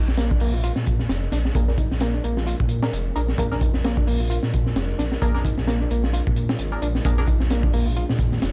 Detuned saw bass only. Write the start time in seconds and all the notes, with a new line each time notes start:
0.07 A#1
0.40 A#1
0.76 A#2
1.09 F1
1.32 A#1
1.55 A#1
1.91 A#1
2.24 A#1
2.60 A#2
2.93 F1
3.16 A#1
3.38 A#1
3.75 A#1
4.07 A#1
4.43 A#2
4.76 F1
4.99 A#1
5.22 A#1
5.57 A#1
5.90 A#1
6.27 A#2
6.59 G#1
6.82 A#1
7.05 A#1
7.41 A#1
7.74 A#1
8.10 A#2
8.43 F1